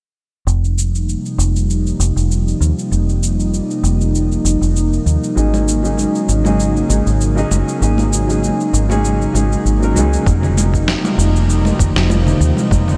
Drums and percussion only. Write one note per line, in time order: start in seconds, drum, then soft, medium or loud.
0.48 cabasa soft
0.64 cabasa soft
0.78 cabasa medium
0.95 cabasa soft
1.09 cabasa soft
1.25 cabasa soft
1.40 cabasa medium
1.56 cabasa soft
1.70 cabasa soft
1.87 cabasa soft
2.00 cabasa medium
2.17 cabasa soft
2.31 cabasa soft
2.48 cabasa soft
2.62 cabasa medium
2.79 cabasa soft
2.92 cabasa soft
3.09 cabasa soft
3.23 cabasa medium
3.40 cabasa soft
3.54 cabasa soft
3.70 cabasa soft
3.84 cabasa medium
4.01 cabasa soft
4.15 cabasa soft
4.32 cabasa soft
4.46 cabasa medium
4.62 cabasa soft
4.76 cabasa soft
4.93 cabasa soft
5.07 cabasa medium
5.24 cabasa soft
5.37 cabasa soft
5.54 high conga medium
5.54 cabasa soft
5.68 cabasa medium
5.85 cabasa soft
5.97 high conga medium
5.97 cabasa soft
6.15 cabasa soft
6.29 cabasa medium
6.45 high conga medium
6.45 cabasa soft
6.60 cabasa soft
6.76 cabasa soft
6.90 high conga medium
6.90 cabasa medium
7.07 cabasa soft
7.21 cabasa soft
7.38 cabasa soft
7.51 high conga medium
7.51 cabasa medium
7.68 cabasa soft
7.82 cabasa soft
7.98 high conga medium
7.98 cabasa soft
8.13 cabasa medium
8.30 cabasa soft
8.43 high conga medium
8.43 cabasa soft
8.60 cabasa soft
8.74 cabasa medium
8.90 high conga medium
8.90 cabasa soft
9.05 cabasa soft
9.22 cabasa soft
9.35 high conga medium
9.35 cabasa medium
9.52 cabasa soft
9.66 cabasa soft
9.82 cabasa soft
9.96 high conga loud
9.96 cabasa medium
10.13 cabasa soft
10.26 kick loud
10.26 cabasa soft
10.43 low conga medium
10.43 cabasa soft
10.57 muted conga soft
10.57 high conga medium
10.57 cabasa medium
10.74 kick medium
10.74 cabasa soft
10.88 snare medium
10.88 cabasa soft
11.04 muted conga medium
11.04 high conga medium
11.04 cabasa soft
11.19 cabasa medium
11.36 cabasa soft
11.50 cabasa soft
11.65 muted conga medium
11.65 high conga medium
11.65 cabasa soft
11.79 kick medium
11.79 low conga medium
11.79 cabasa medium
11.96 snare medium
11.96 cabasa soft
12.10 muted conga medium
12.10 high conga medium
12.10 cabasa soft
12.27 low conga medium
12.27 cabasa soft
12.41 cabasa medium
12.57 high conga medium
12.57 cabasa soft
12.71 kick loud
12.71 muted conga soft
12.71 cabasa soft
12.88 low conga medium
12.88 cabasa soft